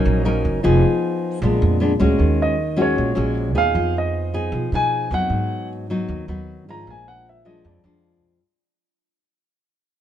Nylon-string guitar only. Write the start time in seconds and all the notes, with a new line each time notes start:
Already playing: F#3 C#4 D#4 A#4
0.25 C#4 D#4 A#4
0.63 F3 B3 D#4 G#4
1.43 A#2 G#3 B3 D4
1.80 G#3 B3 D4
2.00 G#3 C#4 F#4
2.18 D#3
2.76 G#3 C#4 F#4
2.96 A#2
3.15 G#3 C#4 F#4
3.55 B3 D#4 G#4
3.74 F3
4.34 B3 D#4 G#4
4.54 F3
4.73 B3 D#4 G#4
5.12 F#3 B3 D#4
5.31 G#2
5.90 F#3 B3 D#4
6.09 D#3
6.28 F#3 B3 D#4
6.68 F3 G#3 D4
6.87 A#2
7.45 F3 G#3 D4
7.65 F2
7.84 F3 G#3 D4